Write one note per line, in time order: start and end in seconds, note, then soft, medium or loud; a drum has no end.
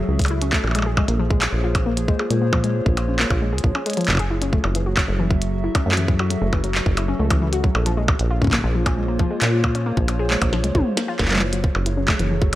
0.00 0.75 F#3 medium
0.00 0.75 F#4 medium
0.00 11.42 G#4 medium
0.00 0.75 A4 medium
0.00 0.75 E5 medium
0.08 0.59 C#2 medium
0.19 kick loud
0.19 closed hi-hat medium
0.22 closed hi-hat medium
0.24 closed hi-hat medium
0.24 percussion blips medium
0.26 closed hi-hat medium
0.28 0.41 E4 medium
0.28 closed hi-hat soft
0.42 0.50 C#4 medium
0.42 closed hi-hat medium
0.53 0.58 A3 medium
0.53 kick loud
0.53 clap loud
0.64 1.04 A#1 medium
0.64 0.73 E3 medium
0.64 percussion blips soft
0.67 percussion blips soft
0.71 closed hi-hat medium
0.71 percussion blips soft
0.75 0.84 G#3 medium
0.75 4.31 A#3 medium
0.75 percussion blips soft
0.79 4.30 F4 medium
0.79 percussion blips soft
0.82 0.95 G#4 medium
0.82 percussion blips soft
0.89 4.31 C5 medium
0.97 1.08 G#3 medium
0.97 kick loud
0.97 percussion blips medium
1.08 1.48 A#1 loud
1.08 1.19 A#3 medium
1.08 5.73 C#5 medium
1.08 closed hi-hat medium
1.19 1.25 F3 loud
1.30 1.41 G#3 medium
1.30 kick loud
1.42 clap loud
1.42 closed hi-hat medium
1.42 percussion blips soft
1.53 2.15 A#1 loud
1.64 1.74 F4 medium
1.75 1.84 C#4 medium
1.75 kick loud
1.75 closed hi-hat medium
1.75 percussion blips medium
1.86 1.91 A#3 medium
1.97 2.06 F3 medium
1.97 closed hi-hat medium
2.08 2.17 G#3 medium
2.08 kick loud
2.19 2.28 G#4 medium
2.19 percussion blips soft
2.30 2.81 A#2 medium
2.30 2.41 G#3 medium
2.30 closed hi-hat medium
2.42 2.52 A#3 medium
2.53 2.58 F3 loud
2.53 kick loud
2.53 percussion blips medium
2.64 2.74 G#3 medium
2.64 closed hi-hat soft
2.86 3.26 A#1 loud
2.86 kick loud
2.97 3.08 F4 medium
2.97 closed hi-hat medium
2.97 percussion blips soft
3.08 3.17 C#4 medium
3.19 3.25 A#3 loud
3.19 clap loud
3.30 3.54 A#1 loud
3.30 3.39 F3 medium
3.30 kick loud
3.30 percussion blips medium
3.42 3.50 G#3 medium
3.53 3.61 C#2 medium
3.53 3.62 G#4 medium
3.58 closed hi-hat medium
3.64 3.72 A#1 medium
3.64 3.69 F3 medium
3.64 kick loud
3.75 3.80 C#4 loud
3.75 percussion blips soft
3.86 3.95 G#3 loud
3.86 closed hi-hat medium
3.90 closed hi-hat medium
3.93 closed hi-hat medium
3.97 4.06 F3 loud
3.97 closed hi-hat soft
4.01 closed hi-hat soft
4.05 4.59 F#1 medium
4.05 kick medium
4.05 clap loud
4.05 closed hi-hat soft
4.05 percussion blips soft
4.11 kick medium
4.11 percussion blips soft
4.13 kick medium
4.13 percussion blips soft
4.15 kick medium
4.15 percussion blips medium
4.17 4.30 G#4 loud
4.17 kick loud
4.17 closed hi-hat medium
4.17 percussion blips medium
4.30 7.86 F#3 medium
4.30 4.41 E4 medium
4.42 4.50 C#4 medium
4.42 closed hi-hat medium
4.53 4.58 A3 loud
4.53 kick loud
4.62 5.04 F#1 loud
4.62 4.73 E3 medium
4.62 7.86 F#4 medium
4.62 percussion blips soft
4.72 4.80 E3 medium
4.72 7.86 E5 medium
4.72 closed hi-hat medium
4.86 4.95 F#4 medium
4.97 5.08 F#3 medium
4.97 kick loud
4.97 clap loud
4.97 percussion blips medium
5.08 5.70 F#1 loud
5.08 5.19 A3 medium
5.19 5.25 E3 loud
5.31 5.41 F#3 medium
5.31 kick loud
5.42 7.86 A4 medium
5.42 closed hi-hat medium
5.64 5.74 E4 medium
5.75 5.84 C#4 medium
5.75 kick loud
5.75 closed hi-hat medium
5.75 percussion blips medium
5.86 6.37 F#2 medium
5.86 5.91 A3 loud
5.92 clap loud
5.97 6.06 E3 medium
5.97 closed hi-hat medium
6.08 6.14 E3 medium
6.08 kick loud
6.19 6.28 F#4 medium
6.19 percussion blips medium
6.30 6.41 F#3 medium
6.30 closed hi-hat medium
6.42 6.81 F#1 medium
6.42 6.52 A3 medium
6.53 6.58 E3 loud
6.53 kick loud
6.53 percussion blips medium
6.64 6.74 F#3 medium
6.64 closed hi-hat soft
6.75 clap loud
6.86 7.15 F#1 medium
6.86 kick loud
6.97 7.08 E4 medium
6.97 closed hi-hat medium
6.97 percussion blips soft
7.08 7.17 C#4 medium
7.19 7.70 C#2 medium
7.19 7.25 A3 medium
7.30 7.39 E3 medium
7.30 kick loud
7.30 closed hi-hat medium
7.30 percussion blips medium
7.42 7.47 E3 medium
7.53 7.62 F#4 medium
7.53 closed hi-hat medium
7.64 7.74 F#3 medium
7.64 kick loud
7.75 8.15 A#1 medium
7.75 7.86 A3 medium
7.75 percussion blips medium
7.86 7.91 F3 loud
7.86 11.42 A#3 medium
7.86 closed hi-hat medium
7.97 8.08 G#3 medium
7.97 11.42 F4 medium
8.08 12.03 C#5 medium
8.08 kick loud
8.08 percussion blips medium
8.19 8.59 A#1 medium
8.19 11.42 C5 medium
8.19 closed hi-hat soft
8.31 8.41 F4 medium
8.42 8.50 C#4 medium
8.42 kick medium
8.44 kick medium
8.47 kick medium
8.50 kick soft
8.53 8.58 A#3 loud
8.53 kick soft
8.53 clap loud
8.53 closed hi-hat medium
8.53 percussion blips medium
8.55 kick soft
8.58 kick soft
8.61 9.26 A#1 loud
8.61 8.73 F3 medium
8.61 kick soft
8.75 8.80 F3 medium
8.86 8.95 G#4 medium
8.86 kick loud
8.86 closed hi-hat medium
8.86 percussion blips medium
8.97 9.08 G#3 medium
9.08 9.19 A#3 medium
9.19 9.25 F3 loud
9.19 kick loud
9.30 9.41 G#3 medium
9.42 9.93 A#2 medium
9.42 clap loud
9.42 closed hi-hat medium
9.64 9.74 F4 medium
9.64 kick loud
9.64 percussion blips medium
9.75 9.84 C#4 medium
9.75 closed hi-hat medium
9.86 9.91 A#3 loud
9.97 10.37 A#1 loud
9.97 10.06 F3 medium
9.97 kick loud
10.08 10.14 F3 medium
10.08 closed hi-hat medium
10.08 percussion blips medium
10.19 10.28 G#4 medium
10.30 10.41 G#3 medium
10.30 clap loud
10.42 10.65 A#1 loud
10.42 10.52 A#3 medium
10.42 kick loud
10.42 closed hi-hat medium
10.42 percussion blips medium
10.53 10.58 F3 loud
10.53 snare medium
10.64 10.72 C#2 medium
10.64 10.74 G#3 medium
10.64 closed hi-hat medium
10.75 10.83 A#1 medium
10.75 kick medium
10.75 high tom medium
10.97 11.02 A#3 medium
10.97 snare medium
10.97 closed hi-hat loud
11.08 11.14 F4 loud
11.19 11.70 F#1 medium
11.19 11.29 A#3 medium
11.19 kick loud
11.19 snare medium
11.19 clap soft
11.22 clap medium
11.25 clap medium
11.28 clap medium
11.31 11.39 A#3 medium
11.31 clap medium
11.31 closed hi-hat medium
11.31 mid tom soft
11.33 clap medium
11.33 mid tom medium
11.36 clap medium
11.36 mid tom medium
11.39 11.47 E3 loud
11.39 12.55 F#3 medium
11.39 clap loud
11.52 11.63 F#3 medium
11.52 12.55 F#4 medium
11.52 12.55 G#4 medium
11.52 closed hi-hat medium
11.64 kick loud
11.75 12.15 F#1 medium
11.75 percussion blips medium
11.86 11.97 E4 medium
11.86 closed hi-hat medium
11.97 12.06 C#4 medium
11.97 12.55 A4 medium
12.08 12.14 A3 loud
12.08 kick loud
12.08 clap loud
12.08 percussion blips medium
12.19 12.55 F#1 loud
12.19 12.28 E3 medium
12.19 closed hi-hat medium
12.31 12.36 E3 medium
12.42 12.50 F#4 medium
12.42 kick loud